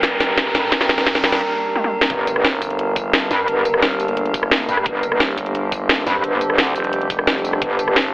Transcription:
Already playing: wobble bass G1, synth drone G3 D4 A4 A#4, ambient pad A#3 D4 G4 G5, riser
0.03 kick, snare, closed hi-hat
0.20 snare, closed hi-hat, tambourine
0.38 kick, snare, closed hi-hat
0.55 wobble bass G2, snare, closed hi-hat, tambourine
0.72 wobble bass G1, kick, snare, closed hi-hat
0.81 snare
0.89 snare, closed hi-hat, tambourine
0.98 snare
1.06 wobble bass G2, kick, snare, closed hi-hat
1.15 snare
1.24 snare, closed hi-hat, tambourine
1.32 snare, closed hi-hat
1.76 high tom
1.84 high tom
2.01 snare
2.10 wobble bass G1, synth drone G3 D4 A4 A#4, ambient pad D4, kick, closed hi-hat, impact
2.27 closed hi-hat, tambourine
2.32 ambient pad A#3
2.36 ambient pad G4, cross-stick
2.44 fm bass G1, snare, closed hi-hat
2.62 kick, closed hi-hat, tambourine
2.70 closed hi-hat
2.79 closed hi-hat
2.96 kick, closed hi-hat, tambourine
3.13 snare, closed hi-hat
3.31 wobble bass G2, snare, closed hi-hat, tambourine
3.48 wobble bass G1, closed hi-hat
3.65 closed hi-hat, tambourine
3.74 cross-stick
3.82 fm bass G1, snare, closed hi-hat
3.91 closed hi-hat
4.00 closed hi-hat, tambourine
4.08 closed hi-hat
4.17 closed hi-hat
4.26 closed hi-hat
4.34 kick, closed hi-hat, tambourine
4.43 cross-stick
4.51 snare, closed hi-hat
4.60 cross-stick
4.69 wobble bass G2, closed hi-hat, tambourine
4.77 cross-stick
4.86 wobble bass G1, synth drone C5, kick, closed hi-hat
5.03 closed hi-hat, tambourine
5.12 cross-stick
5.20 fm bass G1, snare, closed hi-hat
5.38 kick, closed hi-hat, tambourine
5.46 closed hi-hat
5.55 closed hi-hat
5.72 kick, closed hi-hat, tambourine
5.89 snare, closed hi-hat
6.07 wobble bass G2, snare, closed hi-hat, tambourine
6.24 wobble bass G1, closed hi-hat
6.41 closed hi-hat, tambourine
6.50 cross-stick
6.58 fm bass D2, snare, closed hi-hat
6.67 closed hi-hat
6.76 fm bass F1, closed hi-hat, tambourine
6.84 closed hi-hat
6.93 closed hi-hat
7.01 closed hi-hat
7.10 kick, closed hi-hat, tambourine
7.19 cross-stick
7.27 snare, closed hi-hat
7.36 cross-stick
7.45 closed hi-hat, tambourine
7.53 cross-stick
7.62 wobble bass G1, synth drone A#4, kick, closed hi-hat
7.79 closed hi-hat, tambourine
7.83 ambient pad A5
7.88 cross-stick
7.96 fm bass G1, snare, closed hi-hat

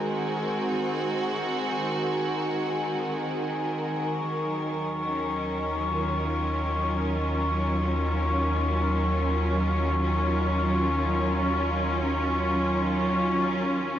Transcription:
Already playing: string section D#3 G#3 C4 F#4 A#4, glass harmonica G#5
4.02 analog synth bass D#2, glass harmonica C#6
4.42 string section F#3
5.06 string section C#4
5.84 string section F4

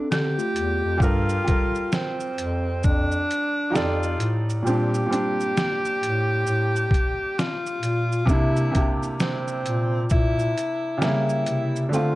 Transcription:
Already playing: tine electric piano C4 A4
0.11 bass clarinet D3, tenor saxophone G4, snare, shaker
0.38 tine electric piano A3 F4, shaker
0.56 bass clarinet E2, closed hi-hat, shaker
0.85 bass clarinet F2
0.97 bass clarinet G2, felt piano G3 F4 A4, kick
1.02 tenor saxophone F4, felt piano A#4, shaker
1.29 shaker
1.43 felt piano G3 F4 A4
1.48 felt piano A#4, kick, closed hi-hat, shaker
1.75 shaker
1.92 tenor saxophone C4, snare, shaker
2.20 shaker
2.38 bass clarinet F2, closed hi-hat, shaker
2.83 bass clarinet F2, tenor saxophone D4, kick, shaker
3.12 shaker
3.31 closed hi-hat, shaker
3.70 bass clarinet F2, felt piano F3 D#4 G4
3.75 tenor saxophone F4, felt piano A4 D5, snare, shaker
4.03 shaker
4.19 bass clarinet A2, closed hi-hat, shaker
4.50 shaker
4.63 felt piano A#2 G3 C4, bass clarinet A#2, tenor saxophone G4, shaker
4.68 felt piano D4
4.94 shaker
5.06 felt piano A#2 G3
5.11 felt piano C4 D4, closed hi-hat, shaker
5.40 shaker
5.57 snare, shaker
5.85 shaker
6.02 bass clarinet A2, closed hi-hat, shaker
6.47 bass clarinet A2, shaker
6.76 shaker
6.91 kick, closed hi-hat, shaker
7.39 tenor saxophone F4, snare, shaker
7.66 shaker
7.83 bass clarinet A#2, closed hi-hat, shaker
8.12 shaker
8.26 felt piano C3 A#3, bass clarinet C3, kick, shaker
8.30 felt piano D4 E4, tenor saxophone E4
8.56 shaker
8.71 felt piano C3 A#3 D4, closed hi-hat, shaker
8.75 felt piano G4, kick
9.03 shaker
9.20 tenor saxophone C4, snare, shaker
9.48 shaker
9.65 bass clarinet A#2, closed hi-hat, shaker
10.10 bass clarinet A#2, tenor saxophone E4, kick, shaker
10.39 shaker
10.58 closed hi-hat, shaker
10.98 felt piano C#3 G3
11.02 bass clarinet C#3, felt piano A#3 E4, tenor saxophone E4, snare, shaker
11.29 shaker
11.46 bass clarinet C3, closed hi-hat, shaker
11.76 shaker
11.89 felt piano D3 A3, bass clarinet D3
11.93 felt piano C4 F4, tenor saxophone F4, shaker

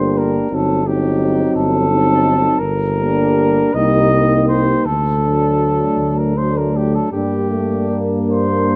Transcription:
Already playing: tuba G1, trombone G3, euphonium A#3, french horn section D4, flugelhorn C5
0.18 flugelhorn A#4
0.50 tuba G1, trombone F#3, euphonium C4, french horn section D#4
0.55 flugelhorn A4
0.86 trombone F#3, euphonium C4, french horn section D#4, flugelhorn G4
1.55 tuba G1, flugelhorn A4
1.90 trombone F#3, euphonium C4, french horn section D#4
2.59 tuba G1, flugelhorn A#4
2.96 trombone G3, euphonium A#3, french horn section D4
3.74 tuba C2, trombone G3, euphonium A#3, french horn section D#4, flugelhorn D#5
4.12 trombone G3, euphonium A#3, french horn section D#4
4.48 flugelhorn C5
4.86 tuba D2, flugelhorn A4
5.23 trombone F#3, euphonium A3, french horn section D4
5.98 tuba D2
6.18 flugelhorn A#4
6.36 trombone F#3, euphonium A3, french horn section D4, flugelhorn C5
6.58 flugelhorn A#4
6.77 flugelhorn G4
6.95 flugelhorn A4
7.11 tuba G2, trombone G3, euphonium A#3, french horn section D4, flugelhorn G4
7.51 trombone A3
7.90 trombone A#3
8.31 flugelhorn C5

